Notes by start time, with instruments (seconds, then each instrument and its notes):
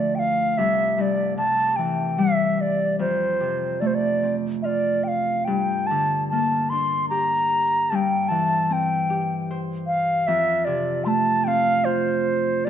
Already playing: harp D2 D3 F3 A3, flute D5
0.15 flute G5
0.19 flute F5
0.57 harp C2, flute E5
0.97 harp G2, flute E5
1.01 flute D5
1.37 harp C3, flute A5
1.76 harp E3, flute G5
2.18 harp G3, flute E5
2.61 flute D5
2.99 harp F2, flute C5
3.40 harp C3
3.80 harp A3, flute D5
3.87 flute C5
3.95 flute D5
4.23 harp C4
4.62 harp F4, flute D5 E5
5.04 flute G5
5.08 flute F5
5.45 harp G2, flute G5
5.87 flute A5
5.91 harp D3
6.28 harp A#3, flute A5
6.70 harp D4, flute C6
7.09 harp G4, flute A#5
7.90 harp G2, flute A5
7.95 flute G5
8.29 harp E3, flute A5
8.68 harp C4, flute A5
8.73 flute G5
9.10 harp G4
9.51 harp C5
9.87 flute F5
10.27 harp F2, flute E5
10.65 harp C3, flute D5
11.04 harp A3, flute A5 C6
11.44 harp C4, flute F5 G5
11.85 harp F4, flute C5
12.65 flute D5